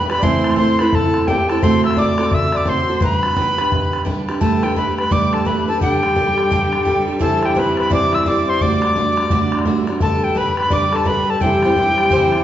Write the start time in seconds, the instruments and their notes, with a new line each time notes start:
Already playing: steel-string acoustic guitar D3, accordion B4
0.10 steel-string acoustic guitar D4 G4 B4, accordion B4, tin whistle B5, bodhran
0.19 steel-string acoustic guitar A2 E3 C4, accordion D5, bodhran
0.23 steel-string acoustic guitar A3 E4 A4, accordion C5, tin whistle C6
0.44 bodhran
0.51 bodhran
0.56 steel-string acoustic guitar A3 C4 E4 A4, accordion C5, tin whistle C6, bodhran
0.79 steel-string acoustic guitar A3 C4 E4 A4, accordion B4, tin whistle B5, bodhran
0.93 accordion A4, tin whistle A5, bodhran
1.14 bodhran
1.27 steel-string acoustic guitar A3 C4 E4 A4, accordion G4, tin whistle G5, bodhran
1.49 steel-string acoustic guitar A3 C4 E4 A4, accordion A4, tin whistle A5, bodhran
1.62 steel-string acoustic guitar D3 A3 C4 F#4 A4, accordion C5, tin whistle C6, bodhran
1.84 accordion E5, tin whistle E6, bodhran
1.91 bodhran
1.97 steel-string acoustic guitar A3 C4 F#4 A4, accordion D5, tin whistle D6, bodhran
2.18 steel-string acoustic guitar C4 F#4 A4, bodhran
2.31 accordion E5, tin whistle E6, bodhran
2.52 accordion D5, bodhran
2.57 tin whistle D6
2.66 steel-string acoustic guitar A3 C4 F#4 A4, accordion C5, tin whistle C6, bodhran
2.88 steel-string acoustic guitar C4 F#4 A4
3.00 steel-string acoustic guitar G3 D4 G4 B4, accordion B4, tin whistle A#5, bodhran
3.15 tin whistle B5
3.23 bodhran
3.36 steel-string acoustic guitar G3 D4 G4 B4, bodhran
3.58 steel-string acoustic guitar D4 G4 B4, bodhran
3.72 bodhran
3.93 bodhran
4.05 steel-string acoustic guitar G3 D4 G4 B4, bodhran
4.28 steel-string acoustic guitar D4 G4 B4, bodhran
4.40 string section G2 G3, steel-string acoustic guitar G3 A3 D4 G4 B4, accordion A4, tin whistle A5, bodhran
4.63 steel-string acoustic guitar D4 G4 B4, tin whistle G5, bodhran
4.76 steel-string acoustic guitar A3 D4 G4 B4, accordion B4, tin whistle B5, bodhran
4.98 accordion B4, tin whistle B5, bodhran
5.11 steel-string acoustic guitar G3 A3 D4 G4 B4, accordion D5, tin whistle D6, bodhran
5.33 accordion A4, tin whistle A5, bodhran
5.45 steel-string acoustic guitar A3 D4 G4 B4, accordion B4, tin whistle B5, bodhran
5.57 bodhran
5.67 steel-string acoustic guitar D4 G4 B4, accordion A4, tin whistle A5
5.79 steel-string acoustic guitar D3 G3 D4 G4 A4, accordion G4, tin whistle G5, bodhran
6.03 steel-string acoustic guitar D4 G4 A4, bodhran
6.15 steel-string acoustic guitar G3 D4 G4 A4, bodhran
6.38 bodhran
6.51 steel-string acoustic guitar D3 G3 D4 G4 A4, bodhran
6.73 bodhran
6.85 steel-string acoustic guitar G3 D4 G4 A4, bodhran
6.96 bodhran
7.07 steel-string acoustic guitar D4 G4 A4
7.19 steel-string acoustic guitar C3 E3 G3 C4 E4 C5, accordion A4, tin whistle A5, bodhran
7.43 accordion G4, tin whistle G5, bodhran
7.55 steel-string acoustic guitar G3 C4 E4 C5, accordion B4, bodhran
7.60 tin whistle B5
7.77 accordion B4, tin whistle B5, bodhran
7.90 steel-string acoustic guitar C3 E3 G3 C4 E4 C5, accordion D5, bodhran
7.94 tin whistle D6
8.13 accordion E5, tin whistle E6, bodhran
8.26 steel-string acoustic guitar G3 C4 E4 C5, accordion D5, tin whistle D6, bodhran
8.36 bodhran
8.48 accordion C5, tin whistle C6
8.61 steel-string acoustic guitar D3 A3 D4 F#4 D5, accordion D5, tin whistle D6, bodhran
8.82 bodhran
8.95 steel-string acoustic guitar A3 D4 F#4 D5, bodhran
9.17 bodhran
9.30 steel-string acoustic guitar D3 A3 D4 F#4 D5, bodhran
9.52 bodhran
9.59 bodhran
9.65 steel-string acoustic guitar A3 D4 F#4 D5, bodhran
9.76 bodhran
9.87 steel-string acoustic guitar D4 F#4 D5, bodhran
10.00 string section G2 G3, steel-string acoustic guitar G3 D4 G4 B4, accordion A4, tin whistle A5, bodhran
10.24 tin whistle G5
10.35 steel-string acoustic guitar G3 D4 G4 B4, accordion B4, tin whistle B5, bodhran
10.57 accordion B4, tin whistle B5, bodhran
10.70 steel-string acoustic guitar G3 D4 G4 B4, accordion D5, tin whistle D6, bodhran
10.93 accordion A4, tin whistle A5, bodhran
11.05 steel-string acoustic guitar G3 D4 G4 B4, accordion B4, tin whistle B5, bodhran
11.17 bodhran
11.30 accordion A4, tin whistle A5
11.38 steel-string acoustic guitar C3 E3 G3 C4 E4 C5, accordion G4 A4, tin whistle G5, bodhran
11.63 steel-string acoustic guitar G3 C4 E4 C5, bodhran
11.76 steel-string acoustic guitar G3 C4 E4 C5, bodhran
11.98 bodhran
12.11 steel-string acoustic guitar C3 E3 G3 C4 E4 C5, bodhran
12.32 bodhran